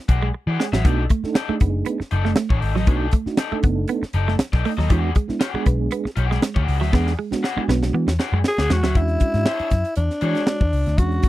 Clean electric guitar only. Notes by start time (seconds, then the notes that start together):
0.22 G#3
0.34 muted clean electric guitar stroke
0.60 G#3
0.73 F#3
0.85 B3
0.98 muted clean electric guitar stroke
1.11 A3
1.36 muted clean electric guitar stroke
1.49 A3
1.61 B3
1.86 B3
2.00 muted clean electric guitar stroke
2.25 A3
2.37 A3
2.50 muted clean electric guitar stroke
2.76 F#3
2.88 B3
3.02 muted clean electric guitar stroke
3.13 A3
3.39 muted clean electric guitar stroke
3.52 A3
3.64 B3
3.89 B3
4.03 muted clean electric guitar stroke
4.28 A3
4.40 muted clean electric guitar stroke
4.65 A3
4.78 F#3
4.90 E3
5.04 muted clean electric guitar stroke
5.16 G#3
5.41 muted clean electric guitar stroke
5.55 G#3
5.67 B3
5.92 B3
6.05 muted clean electric guitar stroke
6.31 G#3
6.43 G#3
6.56 muted clean electric guitar stroke
6.81 F#3
6.94 B3
7.07 muted clean electric guitar stroke
7.19 G#3
7.44 muted clean electric guitar stroke
7.58 G#3
7.69 B3
7.94 B3
8.08 muted clean electric guitar stroke
8.34 G#3
8.45 muted clean electric guitar stroke
8.70 G#3
8.84 F#3